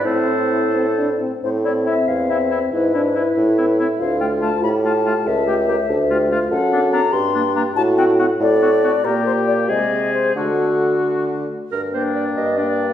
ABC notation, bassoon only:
X:1
M:6/8
L:1/8
Q:3/8=94
K:Am
V:1 name="Bassoon" clef=bass
A,,4- A,, z | A,,3 E,,3 | ^G,,3 A,,3 | D,,3 A,,3 |
^C,,3 D,,3 | [K:Gm] ^F,,3 G,,3 | A,,3 A,,3 | B,,3 C,3 |
D,4- D, z | G,,3 G,,3 |]